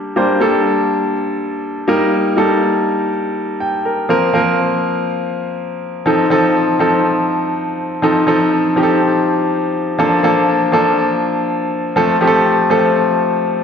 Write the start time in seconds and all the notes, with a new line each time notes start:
Already playing: G3 A#3 D4 G4 A4
0.16 G3 A#3 D4 C5
0.40 G3 A#3 D4 A4
1.88 G3 A#3 D#4 A#4
2.37 G3 A#3 D#4 A4
3.60 G5
3.85 A#4
4.09 F3 A#3 C4 A#4
4.33 F3 A#3 C4 A#4
6.06 F3 C4 D#4 A4
6.30 F3 C4 D#4 A4
6.79 F3 C4 D#4 A4
8.02 F3 C4 D#4 A4
8.27 F3 C4 D#4 A4
8.76 F3 C4 D#4 G4
8.83 A4
9.98 F3 A#3 D4 A4
10.23 F3 A#3 D4 A4
10.72 F3 A#3 D4 A4
11.96 F3 A3 C4 A4
12.21 F3 A3 C4 G4
12.28 A4
12.70 F3 A3 C4 A4